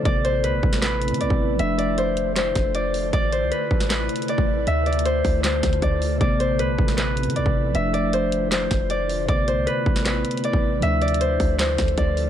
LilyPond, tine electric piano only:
\new Staff \with { instrumentName = "Tine electric piano" } { \time 4/4 \key a \minor \tempo 4 = 156 <c a b>2~ <c a b>8 <c a c'>4. | <f a d'>1 | r1 | r1 |
<c a b>2~ <c a b>8 <c a c'>4. | <f a d'>1 | <c a b>1 | <f a d'>1 | }